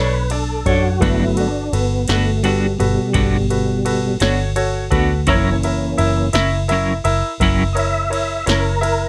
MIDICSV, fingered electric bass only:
0, 0, Header, 1, 2, 480
1, 0, Start_track
1, 0, Tempo, 709220
1, 693, Time_signature, 12, 3, 24, 8
1, 6150, End_track
2, 0, Start_track
2, 0, Title_t, "Fingered electric bass"
2, 0, Program_c, 0, 33
2, 0, Note_on_c, 0, 35, 95
2, 423, Note_off_c, 0, 35, 0
2, 445, Note_on_c, 0, 42, 88
2, 670, Note_off_c, 0, 42, 0
2, 688, Note_on_c, 0, 31, 76
2, 1143, Note_off_c, 0, 31, 0
2, 1169, Note_on_c, 0, 31, 78
2, 1392, Note_off_c, 0, 31, 0
2, 1415, Note_on_c, 0, 31, 105
2, 1867, Note_off_c, 0, 31, 0
2, 1896, Note_on_c, 0, 31, 79
2, 2005, Note_off_c, 0, 31, 0
2, 2130, Note_on_c, 0, 31, 98
2, 2824, Note_off_c, 0, 31, 0
2, 2850, Note_on_c, 0, 31, 80
2, 3304, Note_off_c, 0, 31, 0
2, 3328, Note_on_c, 0, 38, 94
2, 3550, Note_off_c, 0, 38, 0
2, 3564, Note_on_c, 0, 30, 81
2, 4020, Note_off_c, 0, 30, 0
2, 4053, Note_on_c, 0, 30, 83
2, 4273, Note_off_c, 0, 30, 0
2, 4289, Note_on_c, 0, 30, 101
2, 4743, Note_off_c, 0, 30, 0
2, 4771, Note_on_c, 0, 30, 87
2, 4881, Note_off_c, 0, 30, 0
2, 5007, Note_on_c, 0, 30, 102
2, 5701, Note_off_c, 0, 30, 0
2, 5736, Note_on_c, 0, 30, 84
2, 6150, Note_off_c, 0, 30, 0
2, 6150, End_track
0, 0, End_of_file